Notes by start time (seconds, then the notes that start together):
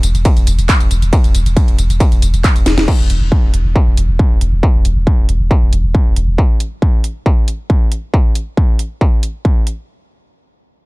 0.03 E1, open hi-hat, tambourine
0.15 E1, closed hi-hat, tambourine
0.25 kick, closed hi-hat, ride, tambourine
0.37 E1, closed hi-hat, tambourine
0.47 E1, open hi-hat, tambourine
0.59 E1, closed hi-hat, tambourine
0.69 kick, clap, closed hi-hat, ride, tambourine
0.80 E1, closed hi-hat, tambourine
0.91 E1, open hi-hat, tambourine
1.02 E1, closed hi-hat, tambourine
1.13 kick, closed hi-hat, ride, tambourine
1.24 E1, closed hi-hat, tambourine
1.35 E1, open hi-hat, tambourine
1.46 E1, closed hi-hat, tambourine
1.57 kick, closed hi-hat, ride, tambourine
1.68 E1, closed hi-hat
1.79 E1, open hi-hat, tambourine
1.90 E1, closed hi-hat, tambourine
2.00 kick, closed hi-hat, ride, tambourine
2.12 E1, closed hi-hat, tambourine
2.22 E1, open hi-hat, tambourine
2.34 E1, closed hi-hat, tambourine
2.44 kick, clap, closed hi-hat, ride, tambourine
2.56 E1, closed hi-hat, tambourine
2.66 E1, snare, open hi-hat, tambourine
2.78 E1, snare, closed hi-hat, tambourine
2.88 kick, crash
2.99 E1
3.10 E1, open hi-hat
3.21 E1
3.32 kick
3.43 E1
3.54 E1, open hi-hat
3.65 E1
3.76 kick
3.87 E1
3.97 E1, open hi-hat
4.09 E1
4.19 kick
4.31 E1
4.41 E1, open hi-hat
4.53 E1
4.63 kick
4.75 E1
4.85 E1, open hi-hat
4.97 E1
5.07 kick
5.18 E1
5.29 E1, open hi-hat
5.40 E1
5.51 kick
5.62 E1
5.73 E1, open hi-hat
5.84 E1
5.95 kick
6.06 E1
6.16 E1, open hi-hat
6.28 E1
6.38 kick
6.60 open hi-hat
6.82 kick
7.04 open hi-hat
7.26 kick
7.48 open hi-hat
7.70 kick
7.92 open hi-hat
8.14 kick
8.35 open hi-hat
8.57 kick
8.79 open hi-hat
9.01 kick
9.23 open hi-hat
9.45 kick
9.67 open hi-hat